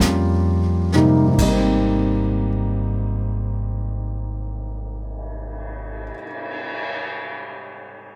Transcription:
0.00 1.35 F2 medium
0.00 0.83 G3 medium
0.00 0.83 A#3 soft
0.00 0.83 C#4 soft
0.00 0.83 F4 medium
0.00 1.35 A#4 soft
0.00 1.35 C#5 soft
0.00 0.88 G5 medium
0.00 snare soft
0.00 hi-hat pedal soft
0.92 1.25 G#2 medium
0.92 1.36 C3 medium
0.92 1.36 G3 medium
0.92 1.36 A#3 soft
0.92 1.36 D#4 medium
0.92 snare soft
1.27 6.02 G#2 medium
1.34 6.09 D#3 soft
1.38 6.09 G#1 medium
1.38 6.15 G3 soft
1.38 6.13 D#5 medium
1.38 kick soft
1.38 crash medium
1.46 6.21 A#3 soft
1.52 6.27 C4 medium
2.38 cymbal swell soft

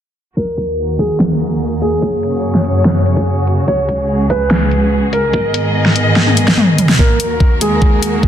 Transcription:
0.37 2.01 D#2 medium
0.37 2.01 D#3 medium
0.37 3.65 A#3 medium
0.37 2.01 F#4 medium
0.37 0.91 A#4 medium
0.37 2.01 A#4 medium
0.37 kick loud
0.58 kick medium
0.58 closed hi-hat medium
0.99 1.74 G#4 medium
0.99 kick medium
0.99 closed hi-hat medium
1.20 snare loud
1.40 closed hi-hat medium
1.82 3.60 G#4 medium
1.82 closed hi-hat medium
2.02 3.66 F#2 medium
2.02 5.30 C#3 medium
2.02 5.30 F#4 medium
2.02 3.66 C#5 medium
2.02 kick loud
2.23 closed hi-hat medium
2.55 snare soft
2.65 closed hi-hat medium
2.85 snare loud
3.06 closed hi-hat medium
3.17 kick medium
3.47 closed hi-hat medium
3.68 5.32 C#2 medium
3.68 5.32 G#3 medium
3.68 5.32 G#4 medium
3.68 4.22 C#5 medium
3.68 kick loud
3.89 kick medium
3.89 closed hi-hat medium
4.30 5.05 B4 medium
4.30 kick loud
4.30 closed hi-hat medium
4.51 snare loud
4.71 closed hi-hat medium
5.13 6.91 A#4 medium
5.13 closed hi-hat medium
5.33 6.97 G#2 medium
5.33 6.97 D#3 medium
5.33 6.97 B3 medium
5.33 6.97 G#4 medium
5.33 6.97 D#5 medium
5.33 kick loud
5.54 closed hi-hat medium
5.86 snare soft
5.96 closed hi-hat medium
6.16 snare medium
6.27 high tom medium
6.37 closed hi-hat medium
6.48 kick loud
6.48 snare medium
6.58 mid tom medium
6.78 closed hi-hat medium
6.78 mid tom medium
6.89 snare medium
6.99 8.28 D#2 medium
6.99 8.28 D#3 medium
6.99 8.28 A#3 medium
6.99 7.53 A#3 medium
6.99 8.28 F#4 medium
6.99 8.28 A#4 medium
6.99 7.53 A#4 medium
6.99 kick medium
7.20 closed hi-hat medium
7.40 kick medium
7.61 8.28 G#3 medium
7.61 8.28 G#4 medium
7.61 closed hi-hat medium
7.82 kick medium
8.03 closed hi-hat medium
8.23 kick medium

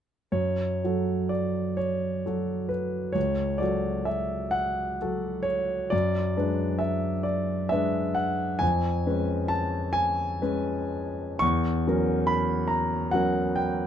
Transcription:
0.32 0.80 F#2 soft
0.32 1.30 C#5 medium
0.84 2.22 F#3 soft
0.84 2.22 F#4 soft
0.84 2.23 A4 soft
1.29 1.78 D5 soft
1.77 2.69 C#5 medium
2.26 3.12 F#3 soft
2.26 3.12 F#4 soft
2.26 3.12 A4 soft
2.69 3.15 B4 soft
3.12 3.59 C#2 soft
3.12 3.59 C#5 medium
3.58 4.97 F#3 soft
3.58 4.97 F#4 soft
3.58 4.98 A4 soft
3.58 4.06 D5 medium
4.05 4.53 E5 medium
4.51 5.46 F#5 medium
5.01 5.89 F#3 soft
5.01 5.89 F#4 soft
5.01 5.89 A4 soft
5.43 5.90 C#5 medium
5.90 6.36 F#2 medium
5.90 6.81 D5 medium
6.36 7.67 G#3 soft
6.36 7.68 D4 soft
6.36 7.68 B4 soft
6.79 7.25 E5 medium
7.23 7.70 D5 medium
7.69 8.58 G#3 soft
7.69 8.58 D4 soft
7.69 8.58 B4 soft
7.69 8.15 E5 medium
8.15 8.61 F#5 medium
8.59 9.05 F2 medium
8.59 9.50 G#5 medium
9.06 10.39 G#3 soft
9.06 10.39 C#4 soft
9.06 10.40 B4 soft
9.48 9.95 A5 medium
9.93 11.40 G#5 medium
10.42 11.37 G#3 soft
10.42 11.38 C#4 soft
10.42 11.37 B4 soft
11.39 11.86 E2 medium
11.39 12.28 C#6 medium
11.87 13.10 F#3 soft
11.87 13.10 C#4 soft
11.87 13.10 A#4 soft
12.27 12.70 B5 medium
12.68 13.12 A#5 medium
13.11 13.87 F#3 soft
13.11 13.87 C#4 soft
13.11 13.87 A#4 soft
13.11 13.57 F#5 medium
13.56 13.87 G5 medium

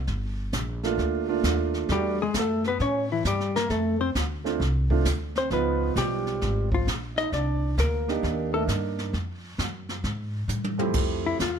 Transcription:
0.07 0.51 G1 medium
0.07 brush sweep soft
0.07 kick soft
0.07 snare soft
0.53 0.97 A#1 medium
0.53 kick soft
0.53 snare medium
0.53 hi-hat pedal medium
0.83 1.25 A3 medium
0.83 1.26 A#3 medium
0.83 1.26 D4 medium
0.83 1.26 F4 medium
0.83 snare soft
0.98 1.42 D2 medium
0.98 brush sweep soft
0.98 kick soft
0.98 snare soft
1.28 1.85 A3 medium
1.28 1.85 A#3 medium
1.28 1.86 D4 medium
1.28 1.86 F4 medium
1.43 1.87 D#2 medium
1.43 kick soft
1.43 snare medium
1.43 hi-hat pedal medium
1.74 snare soft
1.89 2.33 E2 medium
1.89 2.16 G3 medium
1.89 2.18 G3 medium
1.89 2.19 G3 medium
1.89 2.16 A3 medium
1.89 2.16 D4 medium
1.89 2.16 F#4 medium
1.89 2.19 G4 medium
1.89 brush sweep soft
1.89 kick soft
1.89 snare soft
2.21 2.34 G#3 medium
2.21 2.36 G#3 medium
2.21 2.35 G#4 medium
2.34 2.78 F#2 medium
2.34 2.62 A3 medium
2.34 kick soft
2.34 snare medium
2.34 hi-hat pedal medium
2.39 2.66 A3 medium
2.39 2.66 A4 medium
2.64 2.79 B3 medium
2.64 2.81 B4 medium
2.64 snare soft
2.69 2.81 B3 medium
2.80 3.23 A2 medium
2.80 3.08 C#4 medium
2.80 3.10 C#4 medium
2.80 3.10 C#5 medium
2.80 brush sweep soft
2.80 kick soft
2.80 snare soft
3.10 3.24 E3 medium
3.10 3.26 E3 soft
3.10 3.25 E4 medium
3.25 3.69 G2 medium
3.25 3.53 G3 medium
3.25 3.55 G3 medium
3.25 3.55 G4 medium
3.25 kick soft
3.25 snare medium
3.25 hi-hat pedal medium
3.40 snare soft
3.55 3.69 A#3 medium
3.55 3.71 A#3 medium
3.55 3.70 A#4 medium
3.55 snare soft
3.69 4.14 F2 medium
3.69 3.97 A3 medium
3.69 4.00 A3 medium
3.69 3.99 A4 medium
3.69 brush sweep soft
3.69 kick soft
3.69 snare soft
3.99 4.14 C4 medium
3.99 4.10 C4 medium
3.99 4.10 C5 medium
4.15 4.59 D2 medium
4.15 kick soft
4.15 snare medium
4.15 hi-hat pedal medium
4.44 4.58 A3 medium
4.44 4.59 C4 medium
4.44 4.59 D4 medium
4.44 4.59 F4 medium
4.44 snare soft
4.60 5.04 C2 medium
4.60 brush sweep soft
4.60 kick soft
4.60 snare soft
4.90 5.04 A3 medium
4.90 5.04 C4 medium
4.90 5.05 D4 medium
4.90 5.05 F4 medium
4.90 kick soft
5.05 5.49 D2 medium
5.05 kick soft
5.05 snare medium
5.05 hi-hat pedal medium
5.35 5.50 C4 medium
5.35 5.52 C5 medium
5.35 snare soft
5.50 5.95 C#2 medium
5.50 6.78 F3 medium
5.50 6.78 B3 medium
5.50 5.94 B3 medium
5.50 6.78 D#4 medium
5.50 6.78 F4 medium
5.50 5.94 B4 medium
5.50 brush sweep soft
5.50 kick soft
5.50 snare soft
5.96 6.40 B1 medium
5.96 6.68 G3 medium
5.96 6.69 G4 medium
5.96 kick soft
5.96 snare medium
5.96 hi-hat pedal soft
6.27 snare soft
6.41 6.86 G#1 medium
6.41 brush sweep soft
6.41 kick soft
6.41 snare soft
6.72 6.86 F3 medium
6.72 6.88 F4 medium
6.72 kick soft
6.87 7.31 A#1 medium
6.87 kick soft
6.87 snare medium
6.87 hi-hat pedal soft
7.17 7.31 D#4 medium
7.17 7.32 D#5 loud
7.17 snare soft
7.32 7.76 C2 medium
7.32 7.76 D4 medium
7.32 7.75 D5 medium
7.32 brush sweep soft
7.32 kick soft
7.32 snare soft
7.78 8.22 D2 medium
7.78 8.50 A#3 medium
7.78 8.50 A#4 medium
7.78 kick soft
7.78 snare medium
7.78 hi-hat pedal medium
8.08 8.50 A#3 medium
8.08 8.50 D4 medium
8.08 8.51 D#4 medium
8.08 8.51 G4 medium
8.08 snare soft
8.23 8.67 D#2 medium
8.23 brush sweep soft
8.23 kick soft
8.23 snare soft
8.52 8.68 A3 medium
8.52 9.10 A#3 medium
8.52 9.11 D4 medium
8.52 9.11 D#4 medium
8.52 8.63 A4 medium
8.52 9.11 A#4 medium
8.68 9.12 G2 medium
8.68 kick soft
8.68 snare medium
8.68 hi-hat pedal soft
8.99 snare soft
9.13 9.57 F2 medium
9.13 brush sweep soft
9.13 kick soft
9.13 snare soft
9.58 10.03 F#2 medium
9.58 kick soft
9.58 snare medium
9.58 hi-hat pedal medium
9.89 snare soft
10.04 10.47 G#2 medium
10.04 brush sweep soft
10.04 kick soft
10.04 snare soft
10.48 10.93 A2 medium
10.48 hi-hat pedal medium
10.48 high tom soft
10.64 high tom medium
10.78 11.36 F2 medium
10.78 11.37 A3 medium
10.78 11.37 C4 medium
10.78 11.37 E4 medium
10.78 11.37 G4 medium
10.78 floor tom medium
10.94 11.38 F2 medium
10.94 brush sweep soft
10.94 kick medium
10.94 snare soft
10.94 crash medium
11.26 11.41 E4 medium
11.39 11.59 E2 medium
11.39 11.59 F4 medium
11.39 kick soft
11.39 snare medium
11.39 hi-hat pedal medium

